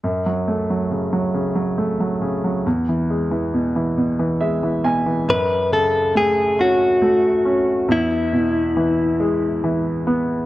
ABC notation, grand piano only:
X:1
M:6/8
L:1/16
Q:3/8=46
K:F#m
V:1 name="Grand piano"
z12 | z8 e2 g2 | z12 | z12 |]
V:2 name="Grand piano" clef=bass
F,, F, A, F, C, F, C, F, A, F, C, F, | E,, E, G, E, B,, E, B,, E, G, E, B,, E, | F,,2 C,2 A,2 C2 A,2 C2 | E,,2 B,,2 E,2 G,2 E,2 B,2 |]